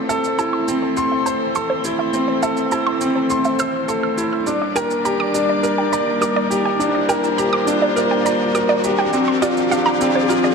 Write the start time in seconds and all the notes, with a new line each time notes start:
Already playing: E3 A3 C4 A4 C5, riser
0.09 A4 E5, shaker
0.24 shaker
0.39 E4 A5, shaker
0.53 C6
0.68 C4, shaker
0.82 C5
0.97 C6, shaker
1.12 E5
1.26 C5 A5, shaker
1.55 A4 C6, shaker
1.70 C5
1.84 E4, shaker
1.99 E5
2.13 C4, shaker
2.28 C5
2.43 A4 E5, shaker
2.57 shaker
2.72 E4 A5, shaker
2.87 C6
3.01 C4, shaker
3.15 C5
3.30 C6, shaker
3.45 E5, shaker
3.59 C5 E6, shaker
3.88 A4 C6, shaker
4.03 E6
4.17 E4, shaker
4.33 E6
4.47 G3 A#3 D4 A#4 D5, shaker
4.62 D5
4.76 A#4 G5, shaker
4.91 shaker
5.05 G4 A#5, shaker
5.20 D6
5.34 D4, shaker
5.49 D5
5.63 A#4, shaker
5.78 G5
5.92 D5 A#5, shaker
6.21 A#4 D6, shaker
6.36 D5
6.50 G4, shaker
6.65 G5
6.79 D4 C5, shaker
6.95 D5
7.09 A#4 G5, shaker
7.24 shaker
7.38 G4 A#5, shaker
7.53 D6
7.67 D4, shaker
7.82 D5
7.96 A#4, shaker
8.11 G5
8.25 D5 A#5, shaker
8.55 A#4 D6, shaker
8.69 D5
8.84 G4, shaker
8.99 G5
9.13 F3 C4 D5, shaker
9.28 C5
9.42 F4 D5, shaker
9.57 shaker
9.71 D4 F5, shaker
9.86 A#5
10.01 C4, shaker
10.15 C5
10.29 F4, shaker
10.44 D5